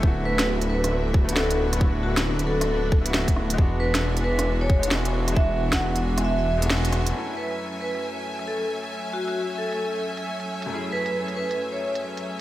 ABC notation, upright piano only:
X:1
M:4/4
L:1/16
Q:"Swing 16ths" 1/4=135
K:F#m
V:1 name="Upright piano"
[A,B,EF]8- [A,B,EF]3 [A,B,EF]4- [A,B,EF] | [A,B,EF]8- [A,B,EF]3 [A,B,EF]4- [A,B,EF] | [G,B,DF]8- [G,B,DF]3 [G,B,DF]4- [G,B,DF] | [G,B,DF]8- [G,B,DF]3 [G,B,DF]4- [G,B,DF] |
[F,,A,CEA]16- | [F,,A,CEA]16 | [F,,A,CEG]16 |]